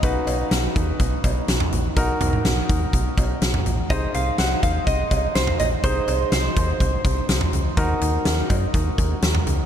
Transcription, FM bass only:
0, 0, Header, 1, 2, 480
1, 0, Start_track
1, 0, Tempo, 483871
1, 31, Time_signature, 4, 2, 24, 8
1, 9581, End_track
2, 0, Start_track
2, 0, Title_t, "FM bass"
2, 0, Program_c, 0, 39
2, 30, Note_on_c, 0, 35, 112
2, 198, Note_off_c, 0, 35, 0
2, 270, Note_on_c, 0, 35, 93
2, 438, Note_off_c, 0, 35, 0
2, 510, Note_on_c, 0, 35, 111
2, 678, Note_off_c, 0, 35, 0
2, 754, Note_on_c, 0, 39, 99
2, 921, Note_off_c, 0, 39, 0
2, 989, Note_on_c, 0, 35, 102
2, 1158, Note_off_c, 0, 35, 0
2, 1230, Note_on_c, 0, 35, 103
2, 1399, Note_off_c, 0, 35, 0
2, 1470, Note_on_c, 0, 35, 105
2, 1639, Note_off_c, 0, 35, 0
2, 1712, Note_on_c, 0, 34, 94
2, 1879, Note_off_c, 0, 34, 0
2, 1951, Note_on_c, 0, 35, 107
2, 2119, Note_off_c, 0, 35, 0
2, 2191, Note_on_c, 0, 35, 108
2, 2359, Note_off_c, 0, 35, 0
2, 2431, Note_on_c, 0, 35, 112
2, 2599, Note_off_c, 0, 35, 0
2, 2674, Note_on_c, 0, 39, 90
2, 2841, Note_off_c, 0, 39, 0
2, 2909, Note_on_c, 0, 35, 99
2, 3078, Note_off_c, 0, 35, 0
2, 3150, Note_on_c, 0, 35, 103
2, 3318, Note_off_c, 0, 35, 0
2, 3390, Note_on_c, 0, 35, 103
2, 3558, Note_off_c, 0, 35, 0
2, 3631, Note_on_c, 0, 34, 93
2, 3799, Note_off_c, 0, 34, 0
2, 3870, Note_on_c, 0, 36, 110
2, 4038, Note_off_c, 0, 36, 0
2, 4111, Note_on_c, 0, 36, 109
2, 4279, Note_off_c, 0, 36, 0
2, 4352, Note_on_c, 0, 36, 105
2, 4520, Note_off_c, 0, 36, 0
2, 4593, Note_on_c, 0, 39, 89
2, 4760, Note_off_c, 0, 39, 0
2, 4830, Note_on_c, 0, 36, 103
2, 4998, Note_off_c, 0, 36, 0
2, 5071, Note_on_c, 0, 36, 97
2, 5239, Note_off_c, 0, 36, 0
2, 5310, Note_on_c, 0, 36, 101
2, 5479, Note_off_c, 0, 36, 0
2, 5551, Note_on_c, 0, 34, 96
2, 5719, Note_off_c, 0, 34, 0
2, 5790, Note_on_c, 0, 36, 108
2, 5958, Note_off_c, 0, 36, 0
2, 6031, Note_on_c, 0, 36, 100
2, 6199, Note_off_c, 0, 36, 0
2, 6270, Note_on_c, 0, 36, 106
2, 6438, Note_off_c, 0, 36, 0
2, 6513, Note_on_c, 0, 39, 104
2, 6680, Note_off_c, 0, 39, 0
2, 6750, Note_on_c, 0, 36, 101
2, 6918, Note_off_c, 0, 36, 0
2, 6990, Note_on_c, 0, 36, 105
2, 7158, Note_off_c, 0, 36, 0
2, 7231, Note_on_c, 0, 36, 101
2, 7399, Note_off_c, 0, 36, 0
2, 7470, Note_on_c, 0, 37, 92
2, 7638, Note_off_c, 0, 37, 0
2, 7710, Note_on_c, 0, 39, 114
2, 7878, Note_off_c, 0, 39, 0
2, 7951, Note_on_c, 0, 39, 104
2, 8119, Note_off_c, 0, 39, 0
2, 8190, Note_on_c, 0, 39, 106
2, 8358, Note_off_c, 0, 39, 0
2, 8433, Note_on_c, 0, 42, 100
2, 8600, Note_off_c, 0, 42, 0
2, 8670, Note_on_c, 0, 39, 104
2, 8838, Note_off_c, 0, 39, 0
2, 8911, Note_on_c, 0, 39, 100
2, 9079, Note_off_c, 0, 39, 0
2, 9151, Note_on_c, 0, 39, 106
2, 9319, Note_off_c, 0, 39, 0
2, 9391, Note_on_c, 0, 37, 93
2, 9559, Note_off_c, 0, 37, 0
2, 9581, End_track
0, 0, End_of_file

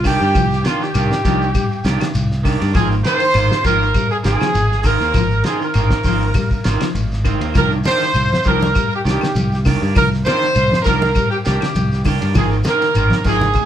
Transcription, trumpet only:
0, 0, Header, 1, 2, 480
1, 0, Start_track
1, 0, Key_signature, -3, "minor"
1, 0, Tempo, 600000
1, 280, Time_signature, 4, 2, 24, 8
1, 10923, End_track
2, 0, Start_track
2, 0, Title_t, "Trumpet"
2, 0, Program_c, 0, 56
2, 57, Note_on_c, 0, 67, 90
2, 542, Note_on_c, 0, 65, 79
2, 554, Note_off_c, 0, 67, 0
2, 662, Note_on_c, 0, 67, 82
2, 674, Note_off_c, 0, 65, 0
2, 1613, Note_off_c, 0, 67, 0
2, 2205, Note_on_c, 0, 68, 79
2, 2312, Note_off_c, 0, 68, 0
2, 2448, Note_on_c, 0, 72, 109
2, 2891, Note_off_c, 0, 72, 0
2, 2927, Note_on_c, 0, 70, 94
2, 3265, Note_off_c, 0, 70, 0
2, 3284, Note_on_c, 0, 68, 76
2, 3334, Note_off_c, 0, 68, 0
2, 3411, Note_on_c, 0, 68, 91
2, 3889, Note_on_c, 0, 70, 94
2, 3901, Note_off_c, 0, 68, 0
2, 4363, Note_off_c, 0, 70, 0
2, 4375, Note_on_c, 0, 68, 83
2, 4487, Note_off_c, 0, 68, 0
2, 4494, Note_on_c, 0, 70, 80
2, 5419, Note_off_c, 0, 70, 0
2, 6064, Note_on_c, 0, 70, 85
2, 6166, Note_off_c, 0, 70, 0
2, 6298, Note_on_c, 0, 72, 110
2, 6790, Note_on_c, 0, 70, 94
2, 6802, Note_off_c, 0, 72, 0
2, 7145, Note_off_c, 0, 70, 0
2, 7169, Note_on_c, 0, 67, 70
2, 7210, Note_off_c, 0, 67, 0
2, 7282, Note_on_c, 0, 67, 74
2, 7710, Note_off_c, 0, 67, 0
2, 7974, Note_on_c, 0, 70, 87
2, 8080, Note_off_c, 0, 70, 0
2, 8199, Note_on_c, 0, 72, 107
2, 8649, Note_off_c, 0, 72, 0
2, 8655, Note_on_c, 0, 70, 86
2, 9010, Note_off_c, 0, 70, 0
2, 9041, Note_on_c, 0, 67, 72
2, 9094, Note_off_c, 0, 67, 0
2, 9162, Note_on_c, 0, 67, 74
2, 9610, Note_off_c, 0, 67, 0
2, 9905, Note_on_c, 0, 68, 79
2, 10008, Note_off_c, 0, 68, 0
2, 10138, Note_on_c, 0, 70, 89
2, 10578, Note_off_c, 0, 70, 0
2, 10611, Note_on_c, 0, 68, 87
2, 10923, Note_off_c, 0, 68, 0
2, 10923, End_track
0, 0, End_of_file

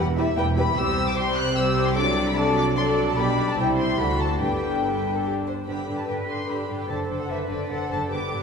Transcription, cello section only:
0, 0, Header, 1, 2, 480
1, 0, Start_track
1, 0, Key_signature, 1, "major"
1, 0, Tempo, 400802
1, 923, Time_signature, 3, 2, 24, 8
1, 4285, Tempo, 420168
1, 6685, Tempo, 406504
1, 9931, End_track
2, 0, Start_track
2, 0, Title_t, "Cello section"
2, 0, Program_c, 0, 48
2, 0, Note_on_c, 0, 40, 80
2, 389, Note_off_c, 0, 40, 0
2, 449, Note_on_c, 0, 40, 72
2, 869, Note_off_c, 0, 40, 0
2, 919, Note_on_c, 0, 48, 80
2, 3750, Note_off_c, 0, 48, 0
2, 3802, Note_on_c, 0, 47, 74
2, 4286, Note_off_c, 0, 47, 0
2, 4286, Note_on_c, 0, 48, 68
2, 4748, Note_off_c, 0, 48, 0
2, 4753, Note_on_c, 0, 38, 65
2, 5226, Note_off_c, 0, 38, 0
2, 5231, Note_on_c, 0, 43, 63
2, 6449, Note_off_c, 0, 43, 0
2, 6678, Note_on_c, 0, 67, 48
2, 7127, Note_off_c, 0, 67, 0
2, 7161, Note_on_c, 0, 71, 47
2, 7632, Note_off_c, 0, 71, 0
2, 7645, Note_on_c, 0, 67, 44
2, 8116, Note_on_c, 0, 69, 47
2, 8124, Note_off_c, 0, 67, 0
2, 8601, Note_off_c, 0, 69, 0
2, 8604, Note_on_c, 0, 71, 51
2, 9081, Note_on_c, 0, 69, 49
2, 9087, Note_off_c, 0, 71, 0
2, 9565, Note_off_c, 0, 69, 0
2, 9567, Note_on_c, 0, 67, 55
2, 9931, Note_off_c, 0, 67, 0
2, 9931, End_track
0, 0, End_of_file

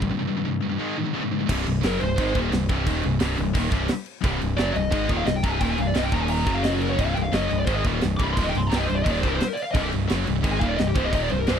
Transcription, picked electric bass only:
0, 0, Header, 1, 2, 480
1, 0, Start_track
1, 0, Key_signature, -3, "minor"
1, 0, Tempo, 344234
1, 155, Time_signature, 4, 2, 24, 8
1, 16164, End_track
2, 0, Start_track
2, 0, Title_t, "Picked electric bass"
2, 0, Program_c, 0, 34
2, 0, Note_on_c, 0, 34, 86
2, 142, Note_off_c, 0, 34, 0
2, 2087, Note_on_c, 0, 24, 96
2, 2305, Note_off_c, 0, 24, 0
2, 2325, Note_on_c, 0, 24, 85
2, 2543, Note_off_c, 0, 24, 0
2, 2565, Note_on_c, 0, 30, 100
2, 2783, Note_off_c, 0, 30, 0
2, 2806, Note_on_c, 0, 24, 83
2, 3023, Note_off_c, 0, 24, 0
2, 3044, Note_on_c, 0, 32, 98
2, 3262, Note_off_c, 0, 32, 0
2, 3279, Note_on_c, 0, 27, 103
2, 3500, Note_off_c, 0, 27, 0
2, 3519, Note_on_c, 0, 24, 82
2, 3739, Note_off_c, 0, 24, 0
2, 3756, Note_on_c, 0, 24, 103
2, 3978, Note_off_c, 0, 24, 0
2, 3993, Note_on_c, 0, 27, 97
2, 4216, Note_off_c, 0, 27, 0
2, 4238, Note_on_c, 0, 24, 88
2, 4458, Note_off_c, 0, 24, 0
2, 4467, Note_on_c, 0, 24, 97
2, 4692, Note_off_c, 0, 24, 0
2, 4727, Note_on_c, 0, 24, 90
2, 4942, Note_off_c, 0, 24, 0
2, 4958, Note_on_c, 0, 27, 101
2, 5171, Note_off_c, 0, 27, 0
2, 5180, Note_on_c, 0, 24, 94
2, 5407, Note_off_c, 0, 24, 0
2, 5908, Note_on_c, 0, 24, 100
2, 6131, Note_off_c, 0, 24, 0
2, 6158, Note_on_c, 0, 24, 84
2, 6377, Note_off_c, 0, 24, 0
2, 6386, Note_on_c, 0, 30, 102
2, 6610, Note_off_c, 0, 30, 0
2, 6623, Note_on_c, 0, 24, 84
2, 6848, Note_off_c, 0, 24, 0
2, 6867, Note_on_c, 0, 32, 99
2, 7090, Note_off_c, 0, 32, 0
2, 7107, Note_on_c, 0, 27, 96
2, 7322, Note_off_c, 0, 27, 0
2, 7330, Note_on_c, 0, 24, 81
2, 7561, Note_off_c, 0, 24, 0
2, 7581, Note_on_c, 0, 24, 97
2, 7807, Note_off_c, 0, 24, 0
2, 7825, Note_on_c, 0, 27, 92
2, 8049, Note_off_c, 0, 27, 0
2, 8061, Note_on_c, 0, 24, 85
2, 8286, Note_off_c, 0, 24, 0
2, 8294, Note_on_c, 0, 24, 102
2, 8523, Note_off_c, 0, 24, 0
2, 8536, Note_on_c, 0, 27, 102
2, 8987, Note_off_c, 0, 27, 0
2, 9019, Note_on_c, 0, 30, 97
2, 9692, Note_off_c, 0, 30, 0
2, 9751, Note_on_c, 0, 24, 98
2, 9972, Note_off_c, 0, 24, 0
2, 9993, Note_on_c, 0, 24, 82
2, 10207, Note_off_c, 0, 24, 0
2, 10216, Note_on_c, 0, 30, 102
2, 10444, Note_off_c, 0, 30, 0
2, 10473, Note_on_c, 0, 24, 90
2, 10693, Note_off_c, 0, 24, 0
2, 10704, Note_on_c, 0, 32, 93
2, 10928, Note_off_c, 0, 32, 0
2, 10946, Note_on_c, 0, 27, 103
2, 11170, Note_off_c, 0, 27, 0
2, 11200, Note_on_c, 0, 24, 82
2, 11413, Note_off_c, 0, 24, 0
2, 11422, Note_on_c, 0, 24, 100
2, 11647, Note_off_c, 0, 24, 0
2, 11676, Note_on_c, 0, 27, 95
2, 11895, Note_off_c, 0, 27, 0
2, 11917, Note_on_c, 0, 24, 89
2, 12136, Note_off_c, 0, 24, 0
2, 12156, Note_on_c, 0, 24, 104
2, 12375, Note_off_c, 0, 24, 0
2, 12413, Note_on_c, 0, 24, 88
2, 12625, Note_off_c, 0, 24, 0
2, 12636, Note_on_c, 0, 27, 108
2, 12856, Note_off_c, 0, 27, 0
2, 12875, Note_on_c, 0, 24, 102
2, 13095, Note_off_c, 0, 24, 0
2, 13586, Note_on_c, 0, 24, 98
2, 13811, Note_off_c, 0, 24, 0
2, 13857, Note_on_c, 0, 24, 91
2, 14069, Note_off_c, 0, 24, 0
2, 14089, Note_on_c, 0, 30, 107
2, 14304, Note_off_c, 0, 30, 0
2, 14333, Note_on_c, 0, 24, 83
2, 14547, Note_off_c, 0, 24, 0
2, 14561, Note_on_c, 0, 32, 96
2, 14781, Note_off_c, 0, 32, 0
2, 14810, Note_on_c, 0, 27, 103
2, 15026, Note_off_c, 0, 27, 0
2, 15053, Note_on_c, 0, 24, 84
2, 15264, Note_off_c, 0, 24, 0
2, 15272, Note_on_c, 0, 24, 106
2, 15497, Note_off_c, 0, 24, 0
2, 15521, Note_on_c, 0, 27, 97
2, 15742, Note_off_c, 0, 27, 0
2, 15778, Note_on_c, 0, 24, 85
2, 15992, Note_off_c, 0, 24, 0
2, 16019, Note_on_c, 0, 24, 98
2, 16164, Note_off_c, 0, 24, 0
2, 16164, End_track
0, 0, End_of_file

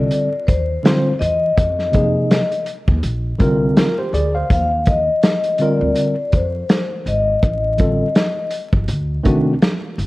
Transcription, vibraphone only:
0, 0, Header, 1, 2, 480
1, 0, Start_track
1, 0, Tempo, 731707
1, 1034, Time_signature, 4, 2, 24, 8
1, 6604, End_track
2, 0, Start_track
2, 0, Title_t, "Vibraphone"
2, 0, Program_c, 0, 11
2, 0, Note_on_c, 0, 74, 87
2, 307, Note_on_c, 0, 72, 85
2, 324, Note_off_c, 0, 74, 0
2, 782, Note_on_c, 0, 75, 83
2, 805, Note_off_c, 0, 72, 0
2, 1722, Note_off_c, 0, 75, 0
2, 2969, Note_on_c, 0, 77, 103
2, 3200, Note_on_c, 0, 75, 99
2, 3208, Note_off_c, 0, 77, 0
2, 3688, Note_on_c, 0, 74, 90
2, 3691, Note_off_c, 0, 75, 0
2, 4135, Note_off_c, 0, 74, 0
2, 4168, Note_on_c, 0, 72, 85
2, 4643, Note_on_c, 0, 75, 83
2, 4655, Note_off_c, 0, 72, 0
2, 5572, Note_off_c, 0, 75, 0
2, 6604, End_track
0, 0, End_of_file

